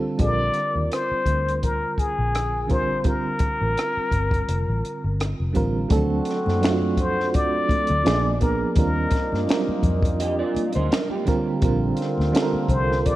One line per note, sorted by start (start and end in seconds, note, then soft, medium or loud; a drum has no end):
0.00 0.14 D3 medium
0.00 0.14 G3 medium
0.00 0.15 C4 medium
0.00 0.15 F4 medium
0.00 0.15 A4 medium
0.18 0.49 A#1 medium
0.18 1.40 D3 medium
0.18 1.41 G3 medium
0.18 1.41 C4 medium
0.18 1.41 F4 medium
0.18 0.28 G#4 medium
0.18 0.88 D5 loud
0.18 kick loud
0.18 closed hi-hat medium
0.28 1.45 A#4 medium
0.54 closed hi-hat medium
0.58 cross-stick soft
0.76 0.88 D#2 medium
0.92 1.65 C5 medium
0.92 cross-stick medium
0.92 closed hi-hat medium
1.11 muted fingered electric bass stroke soft
1.26 1.84 D2 medium
1.26 kick medium
1.26 closed hi-hat medium
1.49 cross-stick soft
1.49 closed hi-hat soft
1.63 2.01 A#4 medium
1.63 kick medium
1.63 closed hi-hat medium
1.98 2.70 G#4 medium
1.98 muted fingered electric bass stroke soft
1.98 kick medium
1.98 closed hi-hat medium
2.19 3.05 A#1 medium
2.35 cross-stick loud
2.35 closed hi-hat medium
2.67 2.99 D3 medium
2.67 2.99 G3 medium
2.67 3.00 C4 medium
2.67 3.00 F4 medium
2.67 3.01 A#4 medium
2.67 3.08 C5 medium
2.67 kick medium
2.67 closed hi-hat medium
3.03 3.34 F1 medium
3.03 4.26 D3 medium
3.03 4.26 G3 medium
3.03 4.27 C4 medium
3.03 4.27 F4 medium
3.03 5.20 A#4 medium
3.03 4.27 A#4 medium
3.03 kick loud
3.03 closed hi-hat medium
3.39 kick medium
3.39 closed hi-hat medium
3.61 3.74 A1 medium
3.77 cross-stick loud
3.77 closed hi-hat medium
3.97 muted fingered electric bass stroke soft
4.11 4.41 G1 medium
4.11 kick medium
4.11 closed hi-hat medium
4.31 kick medium
4.31 closed hi-hat soft
4.49 4.64 F1 medium
4.49 closed hi-hat medium
4.68 4.81 A1 medium
4.85 closed hi-hat medium
5.04 5.33 G1 medium
5.20 cross-stick loud
5.20 closed hi-hat medium
5.40 5.53 F1 medium
5.53 5.85 D3 medium
5.53 5.85 G3 medium
5.53 5.86 C4 medium
5.53 5.86 F4 medium
5.53 5.87 A#4 medium
5.53 kick medium
5.53 closed hi-hat medium
5.57 5.85 A1 medium
5.89 6.20 D2 medium
5.89 7.66 D3 medium
5.89 5.97 D#3 medium
5.89 6.51 A3 medium
5.89 7.66 C4 medium
5.89 6.52 C4 medium
5.89 6.52 D4 medium
5.89 7.66 F#4 medium
5.89 6.53 A4 loud
5.89 kick loud
5.89 closed hi-hat medium
5.89 muted conga soft
5.89 low conga medium
5.95 6.54 F#3 medium
6.10 muted conga soft
6.25 closed hi-hat medium
6.29 snare soft
6.46 7.66 F#2 medium
6.46 snare soft
6.46 high conga medium
6.61 7.83 F#3 medium
6.61 7.83 A3 medium
6.61 7.84 C4 medium
6.61 7.84 D4 medium
6.61 6.70 F4 medium
6.61 snare loud
6.61 closed hi-hat medium
6.61 muted conga soft
6.65 finger snap medium
6.71 7.88 F#4 medium
6.82 high conga medium
6.97 7.36 C5 medium
6.97 kick medium
6.97 closed hi-hat medium
6.97 low conga medium
7.20 snare soft
7.33 8.41 D5 loud
7.33 kick loud
7.33 closed hi-hat medium
7.33 muted conga soft
7.53 muted conga soft
7.69 muted fingered electric bass stroke soft
7.69 kick medium
7.69 closed hi-hat medium
7.69 high conga medium
7.87 8.02 D2 medium
7.87 closed hi-hat medium
8.03 8.63 A#1 medium
8.03 8.40 B2 medium
8.03 8.35 F3 medium
8.03 8.40 G#3 medium
8.03 8.35 A#3 medium
8.03 8.36 B3 medium
8.03 8.40 D4 medium
8.03 8.36 D4 medium
8.03 8.37 G#4 medium
8.03 snare loud
8.03 closed hi-hat medium
8.03 muted conga soft
8.08 finger snap medium
8.24 high conga soft
8.39 8.71 F3 medium
8.39 8.71 A#3 medium
8.39 8.71 B3 medium
8.39 8.72 D4 medium
8.39 8.75 A#4 medium
8.39 8.72 A#4 medium
8.39 kick medium
8.39 closed hi-hat medium
8.75 9.06 D#2 loud
8.75 11.22 A#2 medium
8.75 9.37 G3 medium
8.75 11.22 A#3 medium
8.75 9.38 C4 medium
8.75 9.37 D4 medium
8.75 11.22 D#4 medium
8.75 9.38 F4 medium
8.75 9.45 A#4 medium
8.75 9.39 A#4 medium
8.75 kick loud
8.75 closed hi-hat medium
8.75 muted conga soft
8.75 low conga medium
8.96 muted conga soft
9.11 kick loud
9.11 closed hi-hat medium
9.15 snare soft
9.32 9.45 G2 medium
9.32 snare soft
9.32 high conga medium
9.47 9.55 F#3 soft
9.47 10.70 C4 medium
9.47 10.69 D4 medium
9.47 10.70 F4 medium
9.47 10.71 A#4 medium
9.47 snare loud
9.47 closed hi-hat medium
9.47 muted conga soft
9.51 10.72 G3 medium
9.51 finger snap medium
9.68 muted fingered electric bass stroke soft
9.68 high conga medium
9.83 10.41 F2 medium
9.83 kick medium
9.83 closed hi-hat medium
9.83 low conga medium
10.02 kick loud
10.02 closed hi-hat medium
10.19 10.38 G4 medium
10.19 10.38 D#5 medium
10.19 closed hi-hat medium
10.19 muted conga soft
10.39 10.73 F4 medium
10.39 10.73 D5 medium
10.54 muted fingered electric bass stroke soft
10.54 closed hi-hat medium
10.54 high conga medium
10.72 10.88 D2 medium
10.72 10.91 D#4 medium
10.72 10.90 C5 loud
10.72 closed hi-hat medium
10.91 11.10 D4 medium
10.91 11.10 A#4 medium
10.91 finger snap medium
10.91 snare loud
10.91 closed hi-hat medium
10.91 muted conga soft
11.10 11.60 A#3 medium
11.10 11.60 G4 medium
11.10 high conga soft
11.25 11.56 D3 medium
11.25 11.57 G3 medium
11.25 11.57 C4 medium
11.25 11.58 F4 medium
11.25 11.58 A#4 loud
11.25 kick medium
11.25 closed hi-hat medium
11.61 11.91 A#1 loud
11.61 11.69 C3 medium
11.61 13.16 D3 medium
11.61 12.23 G3 medium
11.61 13.16 C4 medium
11.61 12.24 C4 medium
11.61 13.16 F4 medium
11.61 12.24 F4 medium
11.61 12.25 A#4 loud
11.61 kick loud
11.61 closed hi-hat medium
11.61 muted conga soft
11.61 low conga medium
11.68 12.26 D3 loud
11.96 closed hi-hat medium
12.01 snare soft
12.17 12.31 D2 medium
12.17 snare soft
12.17 high conga medium
12.32 13.16 D3 medium
12.32 13.16 G3 medium
12.32 13.16 C4 medium
12.32 13.16 F4 medium
12.32 12.42 A4 medium
12.32 closed hi-hat medium
12.32 muted conga soft
12.36 finger snap medium
12.36 snare loud
12.42 13.16 A#4 loud
12.53 muted fingered electric bass stroke soft
12.53 muted conga soft
12.53 high conga medium
12.69 13.16 C2 loud
12.69 13.08 C5 loud
12.69 kick medium
12.69 closed hi-hat medium
12.69 low conga medium
12.92 snare soft
13.06 13.16 D5 loud
13.06 kick medium
13.06 closed hi-hat medium